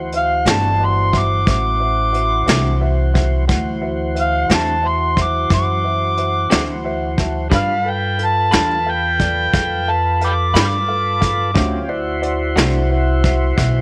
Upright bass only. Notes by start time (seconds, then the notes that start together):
Already playing: D2
0.45 G1
1.47 A1
2.48 C2
3.49 D2
4.50 E2
5.51 F#2
6.52 D2
7.51 G2
8.53 E2
9.54 F2
10.54 G2
11.55 D2
12.56 C2
13.58 B1